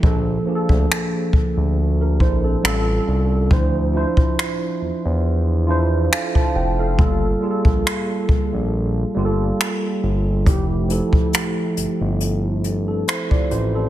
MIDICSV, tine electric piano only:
0, 0, Header, 1, 2, 480
1, 0, Start_track
1, 0, Key_signature, -1, "major"
1, 0, Tempo, 869565
1, 17, Time_signature, 4, 2, 24, 8
1, 7668, End_track
2, 0, Start_track
2, 0, Title_t, "Tine electric piano"
2, 0, Program_c, 0, 4
2, 0, Control_c, 0, 64, 127
2, 11, Note_on_c, 0, 53, 71
2, 18, Note_on_c, 0, 58, 68
2, 23, Control_c, 0, 64, 0
2, 25, Note_on_c, 0, 62, 65
2, 31, Note_on_c, 0, 69, 83
2, 124, Control_c, 0, 64, 127
2, 240, Note_off_c, 0, 53, 0
2, 243, Note_off_c, 0, 58, 0
2, 246, Note_off_c, 0, 62, 0
2, 249, Note_on_c, 0, 53, 78
2, 250, Note_off_c, 0, 69, 0
2, 256, Note_on_c, 0, 58, 68
2, 263, Note_on_c, 0, 62, 65
2, 270, Note_on_c, 0, 68, 64
2, 302, Note_off_c, 0, 68, 0
2, 305, Note_on_c, 0, 69, 84
2, 740, Note_off_c, 0, 62, 0
2, 761, Note_off_c, 0, 69, 0
2, 1110, Note_on_c, 0, 70, 63
2, 1114, Note_on_c, 0, 62, 52
2, 1157, Note_off_c, 0, 53, 0
2, 1160, Note_off_c, 0, 58, 0
2, 1213, Note_off_c, 0, 70, 0
2, 1215, Note_off_c, 0, 62, 0
2, 1219, Note_on_c, 0, 72, 76
2, 1221, Note_on_c, 0, 64, 66
2, 1341, Note_off_c, 0, 72, 0
2, 1342, Note_off_c, 0, 64, 0
2, 1348, Note_on_c, 0, 69, 63
2, 1350, Note_on_c, 0, 60, 53
2, 1449, Note_on_c, 0, 55, 88
2, 1456, Note_on_c, 0, 61, 78
2, 1462, Note_off_c, 0, 69, 0
2, 1463, Note_on_c, 0, 65, 81
2, 1465, Control_c, 0, 64, 0
2, 1469, Note_on_c, 0, 69, 101
2, 1557, Control_c, 0, 64, 127
2, 1576, Note_off_c, 0, 60, 0
2, 1904, Note_off_c, 0, 55, 0
2, 1908, Note_off_c, 0, 61, 0
2, 1912, Note_off_c, 0, 65, 0
2, 1915, Note_off_c, 0, 69, 0
2, 1928, Note_on_c, 0, 53, 76
2, 1935, Note_on_c, 0, 62, 71
2, 1942, Note_on_c, 0, 64, 73
2, 1945, Control_c, 0, 64, 0
2, 1949, Note_on_c, 0, 72, 85
2, 2049, Control_c, 0, 64, 127
2, 2158, Note_off_c, 0, 53, 0
2, 2162, Note_off_c, 0, 62, 0
2, 2165, Note_off_c, 0, 64, 0
2, 2169, Note_off_c, 0, 72, 0
2, 2170, Note_on_c, 0, 65, 73
2, 2177, Note_on_c, 0, 62, 69
2, 2184, Note_on_c, 0, 64, 72
2, 2191, Note_on_c, 0, 72, 85
2, 3077, Note_off_c, 0, 65, 0
2, 3080, Note_off_c, 0, 62, 0
2, 3084, Note_off_c, 0, 64, 0
2, 3087, Note_off_c, 0, 72, 0
2, 3130, Note_on_c, 0, 65, 89
2, 3137, Note_on_c, 0, 62, 82
2, 3143, Note_on_c, 0, 64, 80
2, 3150, Note_on_c, 0, 72, 97
2, 3377, Note_on_c, 0, 77, 66
2, 3381, Note_on_c, 0, 69, 51
2, 3383, Note_off_c, 0, 72, 0
2, 3500, Note_off_c, 0, 77, 0
2, 3502, Note_off_c, 0, 69, 0
2, 3508, Note_on_c, 0, 81, 68
2, 3511, Note_on_c, 0, 72, 57
2, 3612, Note_off_c, 0, 81, 0
2, 3614, Note_off_c, 0, 72, 0
2, 3618, Note_on_c, 0, 79, 66
2, 3741, Note_off_c, 0, 79, 0
2, 3749, Note_on_c, 0, 77, 64
2, 3752, Note_on_c, 0, 69, 55
2, 3811, Note_off_c, 0, 65, 0
2, 3814, Note_off_c, 0, 62, 0
2, 3817, Note_off_c, 0, 64, 0
2, 3847, Note_on_c, 0, 55, 74
2, 3854, Note_on_c, 0, 58, 72
2, 3861, Note_off_c, 0, 69, 0
2, 3861, Note_on_c, 0, 65, 68
2, 3864, Control_c, 0, 64, 0
2, 3868, Note_on_c, 0, 69, 85
2, 3953, Control_c, 0, 64, 127
2, 3976, Note_off_c, 0, 77, 0
2, 4078, Note_off_c, 0, 55, 0
2, 4081, Note_off_c, 0, 58, 0
2, 4085, Note_off_c, 0, 65, 0
2, 4087, Note_on_c, 0, 55, 73
2, 4088, Note_off_c, 0, 69, 0
2, 4094, Note_on_c, 0, 58, 70
2, 4100, Note_on_c, 0, 65, 68
2, 4107, Note_on_c, 0, 68, 66
2, 4141, Note_off_c, 0, 68, 0
2, 4144, Note_on_c, 0, 69, 81
2, 4995, Note_off_c, 0, 55, 0
2, 4999, Note_off_c, 0, 58, 0
2, 5002, Note_off_c, 0, 65, 0
2, 5024, Note_off_c, 0, 69, 0
2, 5049, Note_on_c, 0, 55, 85
2, 5056, Note_on_c, 0, 58, 77
2, 5064, Note_on_c, 0, 65, 79
2, 5071, Note_on_c, 0, 67, 78
2, 5103, Note_off_c, 0, 67, 0
2, 5107, Note_on_c, 0, 69, 92
2, 5731, Note_off_c, 0, 55, 0
2, 5734, Note_off_c, 0, 58, 0
2, 5738, Note_off_c, 0, 65, 0
2, 5759, Note_off_c, 0, 69, 0
2, 5769, Note_on_c, 0, 53, 74
2, 5776, Note_on_c, 0, 57, 70
2, 5783, Control_c, 0, 64, 0
2, 5783, Note_on_c, 0, 64, 73
2, 5789, Note_on_c, 0, 67, 85
2, 5874, Control_c, 0, 64, 127
2, 5998, Note_off_c, 0, 53, 0
2, 6002, Note_off_c, 0, 57, 0
2, 6006, Note_off_c, 0, 64, 0
2, 6009, Note_off_c, 0, 67, 0
2, 6010, Note_on_c, 0, 53, 75
2, 6016, Note_on_c, 0, 57, 66
2, 6023, Note_on_c, 0, 64, 65
2, 6030, Note_on_c, 0, 69, 77
2, 6917, Note_off_c, 0, 53, 0
2, 6920, Note_off_c, 0, 57, 0
2, 6924, Note_off_c, 0, 64, 0
2, 6927, Note_off_c, 0, 69, 0
2, 7110, Note_on_c, 0, 69, 62
2, 7113, Note_on_c, 0, 60, 51
2, 7213, Note_off_c, 0, 69, 0
2, 7215, Note_off_c, 0, 60, 0
2, 7220, Note_on_c, 0, 72, 70
2, 7223, Note_on_c, 0, 64, 60
2, 7341, Note_off_c, 0, 72, 0
2, 7343, Note_off_c, 0, 64, 0
2, 7348, Note_on_c, 0, 74, 63
2, 7352, Note_on_c, 0, 65, 58
2, 7452, Note_off_c, 0, 74, 0
2, 7454, Note_off_c, 0, 65, 0
2, 7458, Note_on_c, 0, 72, 64
2, 7461, Note_on_c, 0, 64, 56
2, 7580, Note_off_c, 0, 72, 0
2, 7582, Note_off_c, 0, 64, 0
2, 7590, Note_on_c, 0, 69, 66
2, 7592, Note_on_c, 0, 60, 51
2, 7668, Note_off_c, 0, 60, 0
2, 7668, Note_off_c, 0, 69, 0
2, 7668, End_track
0, 0, End_of_file